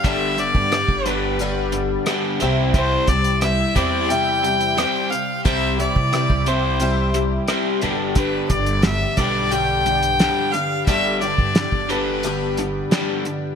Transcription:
<<
  \new Staff \with { instrumentName = "Fiddle" } { \time 4/4 \key g \major \tempo 4 = 89 e''8 d''4 b'4 r4. | c''8 d''8 e''8 d''8 g''4. f''8 | e''8 d''4 c''4 r4. | b'8 d''8 e''8 d''8 g''4. f''8 |
e''8 d''4 b'4 r4. | }
  \new Staff \with { instrumentName = "Twelve-string acoustic guitar" } { \time 4/4 \key g \major <g, d g b d' g'>4 <g b d' g'>8 <g b d' g'>8 <g, d g b d' g'>4 <g b d' g'>8 <c g c' e' g'>8~ | <c g c' e' g'>8 <c' e' g'>8 <g c' e' g'>8 <c' e' g'>8 <c g c' e' g'>4 <g c' g'>4 | <c g c' e' g'>8 <c' e' g'>8 <g c' e' g'>8 <c' e' g'>8 <c g c' e' g'>4 <g c' e' g'>8 <g, d g b d' g'>8~ | <g, d g b d' g'>4 <g b d' g'>8 <g b d' g'>8 <g, d g b d' g'>4 <g b d' g'>4 |
<g, d g b d' g'>8 <g b d' g'>8 <g b d' g'>8 <g b d' g'>8 <g, d g b d' g'>4 <g b d' g'>4 | }
  \new Staff \with { instrumentName = "Overdriven electric guitar" } { \clef bass \time 4/4 \key g \major <g, d g>8 <g, d>8 <g, d>8 <g, d g>8 <g, d>8 <g, d>8 <g, d g>8 <c g c'>8 | <c g c'>8 <c g>8 <c g>8 <c g c'>8 <c g>8 <c g>8 <c g c'>8 <c g>8 | <c g c'>8 <c g>8 <c g>8 <c g c'>8 <c g>8 <c g>8 <c g c'>8 <g, d g>8 | <g, d g>8 <g, d>8 <g, d>8 <g, d g>8 <g, d>8 <g, d>8 <g, d g>8 <g, d>8 |
<g, d g>8 <g, d>8 <g, d>8 <g, d g>8 <g, d>8 <g, d>8 <g, d g>8 <g, d>8 | }
  \new Staff \with { instrumentName = "Upright bass" } { \clef bass \time 4/4 \key g \major g,,8. g,8 g,,2 r16 c,8~ | c,8 c,4 e,2 r8 | c,8. c8 c,2 r16 g,,8~ | g,,8 g,,4 b,,2 r8 |
g,,8. g,8 g,,2 r8. | }
  \new DrumStaff \with { instrumentName = "Drums" } \drummode { \time 4/4 <hh bd>8 hh16 bd16 <hh ss>16 bd16 hh8 hh8 hh8 <hh ss>8 hh8 | <hh bd>8 <hh bd>16 hh16 <hh ss>8 <hh bd>8 hh8 hh16 hh16 <hh ss>8 hh8 | <hh bd>8 hh16 bd16 <hh ss>16 bd16 hh8 hh8 hh8 <hh ss>8 hh8 | <hh bd>8 <hh bd>16 hh16 <hh sn>8 <hh bd>8 hh8 hh16 hh16 <hh sn>8 hh8 |
<hh bd>8 hh16 bd16 <hh sn>16 bd16 hh8 hh8 hh8 <hh sn>8 hh8 | }
>>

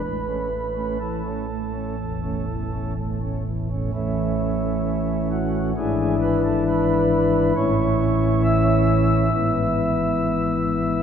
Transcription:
<<
  \new Staff \with { instrumentName = "Pipe organ" } { \time 4/4 \key a \major \tempo 4 = 66 b'4 a'2 r4 | e'4. fis'8 gis'8 b'16 a'16 b'4 | cis''4 e''2. | }
  \new Staff \with { instrumentName = "Pipe organ" } { \time 4/4 \key a \major << { a,16 <a cis'>16 a16 <a cis'>16 e16 <a cis'>16 a16 <a cis'>16 e,16 <a cis'>16 e16 <a cis'>16 a16 <a cis'>16 e16 <a cis'>16 | <a, e a cis'>2 <gis, e d' e'>2 | <a, e cis' e'>2 <gis, e b e'>2 | } \\ { a,,2 e,,2 | a,,2 gis,,2 | a,,2 gis,,2 | } >> }
>>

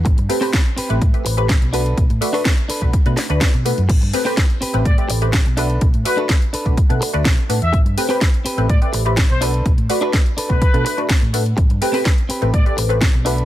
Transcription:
<<
  \new Staff \with { instrumentName = "Trumpet section" } { \time 4/4 \key a \dorian \tempo 4 = 125 r1 | r1 | r2 d''16 d''16 r4. | r8 b'16 r2. e''16 |
r2 d''16 d''16 r8. c''16 r8 | r4. r16 b'4 r4 r16 | r2 d''16 d''16 r4. | }
  \new Staff \with { instrumentName = "Clean electric guitar" } { \time 4/4 \key a \dorian r8. <c' g' b'>16 r8 <c' g' b'>8 r4. <d' a' b'>8 | r8. <d' a' b'>16 r8 <d' a' b'>8 r2 | r8. <c' g' b'>16 r8 <c' g' b'>8 r4. <d' a' b'>8 | r8. <d' a' b'>16 r8 <d' a' b'>8 r2 |
r8. <c' g' b'>16 r8 <c' g' b'>8 r4. <d' a' b'>8 | r8. <d' a' b'>16 r8 <d' a' b'>8 r2 | r8. <c' g' b'>16 r8 <c' g' b'>8 r4. <d' a' b'>8 | }
  \new Staff \with { instrumentName = "Analog polysynth" } { \time 4/4 \key a \dorian r8 <a c' g' b'>16 <a c' g' b'>16 r8. <a c' g' b'>16 r16 <a c' g' b'>8 <a c' g' b'>16 r8 <a d' fis' b'>16 r16 | r8 <a d' fis' b'>16 <a d' fis' b'>16 r8. <a d' fis' b'>16 r16 <a d' fis' b'>8 <a d' fis' b'>16 <a d' fis'>16 r16 <a d' fis' b'>16 r16 | r8 <a c' g' b'>16 <a c' g' b'>16 r8. <a c' g' b'>16 r16 <a c' g' b'>8 <a c' g' b'>16 r8 <a d' fis' b'>16 r16 | r8 <a d' fis' b'>16 <a d' fis' b'>16 r8. <a d' fis' b'>16 r16 <a d' fis' b'>8 <a d' fis' b'>16 r8 <a d' fis' b'>16 r16 |
r8 <a c' g' b'>16 <a c' g' b'>16 r8. <a c' g' b'>16 r16 <a c' g' b'>8 <a c' g' b'>16 r8 <a d' fis' b'>16 r16 | r8 <a d' fis' b'>16 <a d' fis' b'>16 r8. <a d' fis' b'>16 r16 <a d' fis' b'>8 <a d' fis' b'>16 r8 <a d' fis' b'>16 r16 | r8 <a c' g' b'>16 <a c' g' b'>16 r8. <a c' g' b'>16 r16 <a c' g' b'>8 <a c' g' b'>16 r8 <a d' fis' b'>16 r16 | }
  \new Staff \with { instrumentName = "Fingered electric bass" } { \clef bass \time 4/4 \key a \dorian a,,16 g,16 r4 r16 a,,16 r8 a,,8. b,,8. | b,,16 a,16 r4 r16 b,,16 r16 b,16 r16 d,16 r16 b,16 r16 fis,16 | a,,16 g,16 r4 r16 a,,16 a,16 r16 a,,8. b,,8. | b,,16 a,16 r4 r16 b,,16 r16 b,16 r16 d,16 b,,16 r16 a,16 e,16 |
a,,16 g,16 r4 r16 a,,16 a,16 r16 a,,8. b,,8. | b,,16 a,16 r4 r16 b,,16 r16 b,16 r8. a,8. | a,,16 g,16 r4 r16 a,,16 a,16 r16 a,,8. b,,8. | }
  \new DrumStaff \with { instrumentName = "Drums" } \drummode { \time 4/4 <hh bd>16 hh16 hho16 hho16 <hh bd sn>16 hh16 hho16 hh16 <hh bd>16 hh16 hho16 hh16 <hh bd sn>16 hh16 hho16 hh16 | <hh bd>16 hh16 hho16 hho16 <hh bd sn>16 hh16 hho16 <hh bd>16 <hh bd>16 hh16 <hho sn>16 hh16 <hh bd sn>16 hh16 hho16 hh16 | <cymc hh bd>16 hh16 hho16 hho16 <hh bd sn>16 hh16 hho16 hh16 <hh bd>16 hh16 hho16 hh16 <hh bd sn>16 hh16 hho16 hh16 | <hh bd>16 hh16 hho8 <hh bd sn>16 hh16 hho16 <hh bd>16 <hh bd>16 hh16 hho16 hh16 <hh bd sn>16 hh16 hho16 hh16 |
<hh bd>16 hh16 hho16 hho16 <hh bd sn>16 hh16 hho16 hh16 <hh bd>16 hh16 hho16 hh16 <hh bd sn>16 hh16 hho16 hh16 | <hh bd>16 hh16 hho16 hh16 <hh bd sn>16 hh16 hho16 <hh bd>16 <hh bd>16 hh16 hho16 hh16 <hh bd sn>16 hh16 hho16 hh16 | <hh bd>16 hh16 hho16 hho16 <hh bd sn>16 hh16 hho16 hh16 <hh bd>16 hh16 hho16 hh16 <hh bd sn>16 hh16 hho16 hh16 | }
>>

